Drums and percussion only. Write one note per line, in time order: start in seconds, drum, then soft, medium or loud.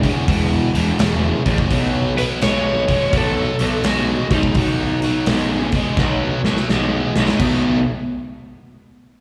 0.03 kick medium
0.03 open hi-hat medium
0.28 kick loud
0.28 open hi-hat medium
0.75 open hi-hat medium
0.99 snare loud
0.99 open hi-hat medium
1.46 kick medium
1.46 open hi-hat medium
1.58 kick medium
1.71 kick loud
1.71 open hi-hat medium
2.18 open hi-hat medium
2.42 snare loud
2.42 open hi-hat medium
2.89 kick medium
2.89 open hi-hat soft
3.13 kick loud
3.13 open hi-hat medium
3.59 open hi-hat medium
3.84 snare loud
3.84 open hi-hat medium
4.31 kick medium
4.31 open hi-hat medium
4.43 kick medium
4.55 kick loud
4.55 open hi-hat medium
5.02 open hi-hat soft
5.26 snare loud
5.26 open hi-hat medium
5.72 kick medium
5.72 open hi-hat medium
5.97 kick loud
5.97 snare medium
6.45 snare medium
6.57 snare medium
6.69 snare medium
7.16 snare loud
7.28 snare medium
7.39 kick medium
7.39 crash medium